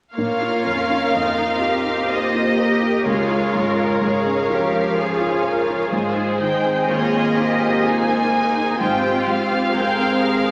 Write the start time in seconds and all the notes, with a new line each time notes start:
0.15 A#1 A#3 F4 A#4 C#5 F5
0.41 F4
0.64 F2 C#4
0.89 D#4
1.13 F2 C4 D#4 F4 D#5
1.38 D#4
1.62 F4 G4
1.85 D#4
2.09 A#3 F4 A#4 C5 D#5
2.34 F4
2.58 G4 A#4
2.82 F4
3.05 C#2 G#3 F4 G#4 A#4 C#5 F5
3.30 F4
3.55 G#2 A#4
3.77 C#4
4.01 G#2 G#3 G#4 A#4 F5
4.25 C#4
4.50 F3 F4 G4
4.73 C#4
4.97 F4 G#4 A#4
5.21 F4
5.44 A#4
5.69 F4
5.92 G#2 G#3 F4 G#4 C5
6.16 D#4
6.39 D#3 D#4 G5
6.64 C4
6.86 D#3 A#3 F4 G#4 C#5 D#5
7.12 C4
7.35 D#4 G4 C5
7.60 C4
7.83 D#4 F4 A#4 G#5
8.09 D#4
8.31 D#4 A#4
8.57 D#4
8.79 G#2 C4 F4 G4 C5 G5
9.04 G4
9.25 G#3 F5
9.50 C4
9.73 G#3 G#4 A#4 C5 G5
9.98 C4
10.20 G4 G#4 A#4
10.45 C4